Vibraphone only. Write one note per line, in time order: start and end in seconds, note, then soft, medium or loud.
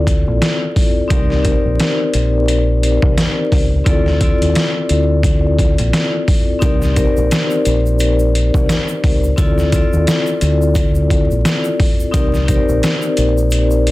0.00 1.08 C4 medium
0.00 1.12 E4 medium
0.00 1.12 F4 medium
0.00 1.12 A4 medium
0.00 1.12 D5 loud
1.08 1.38 C4 medium
1.08 1.38 D#4 medium
1.08 1.39 G4 medium
1.08 1.39 A#4 medium
1.08 1.40 D5 medium
1.42 2.54 C4 medium
1.42 2.54 D#4 medium
1.42 2.55 G4 medium
1.42 2.55 A#4 medium
1.42 1.53 C5 medium
1.52 2.59 D5 loud
3.84 4.14 C4 medium
3.84 4.14 E4 medium
3.84 4.15 F4 medium
3.84 4.15 A4 medium
3.84 4.16 D5 loud
4.20 5.31 C4 medium
4.20 5.31 E4 medium
4.20 5.32 F4 medium
4.20 5.32 A4 medium
4.20 5.33 D5 loud
6.59 6.89 C4 medium
6.59 6.90 D#4 medium
6.59 6.90 G4 medium
6.59 6.91 A#4 medium
6.59 6.91 D5 medium
6.93 8.05 C4 medium
6.93 8.06 D#4 medium
6.93 8.06 G4 medium
6.93 8.07 A#4 medium
6.93 7.05 C5 medium
7.04 8.10 D5 loud
9.36 9.66 C4 medium
9.36 9.66 E4 medium
9.36 9.67 F4 medium
9.36 9.67 A4 medium
9.36 9.68 D5 medium
9.72 10.83 C4 medium
9.72 10.83 E4 medium
9.72 10.83 F4 medium
9.72 10.84 A4 medium
9.72 10.84 D5 loud
12.11 12.41 C4 medium
12.11 12.42 D#4 medium
12.11 12.42 G4 medium
12.11 12.43 A#4 medium
12.11 12.43 D5 medium
12.45 13.57 C4 medium
12.45 13.57 D#4 medium
12.45 13.58 G4 medium
12.45 13.58 A#4 medium
12.45 12.56 C5 medium
12.55 13.62 D5 loud